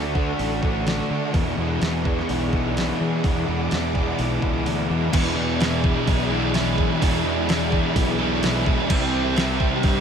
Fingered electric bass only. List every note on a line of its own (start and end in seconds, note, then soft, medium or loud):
0.00 0.32 D2 medium
0.39 1.00 A1 loud
1.10 1.31 D3 medium
1.34 1.54 E2 medium
1.58 1.78 E2 medium
1.82 2.22 E2 medium
2.30 2.90 B1 medium
3.01 3.21 E3 medium
3.24 3.44 E2 medium
3.48 3.68 E2 medium
3.72 4.12 E2 medium
4.19 4.39 B1 loud
4.42 4.64 C#2 medium
4.66 4.87 D2 medium
4.90 5.11 E2 medium
5.13 5.94 E2 loud
6.07 6.88 B1 medium
7.02 7.82 E2 medium
7.96 8.76 B1 loud
8.90 9.70 C2 medium
9.84 10.01 G2 loud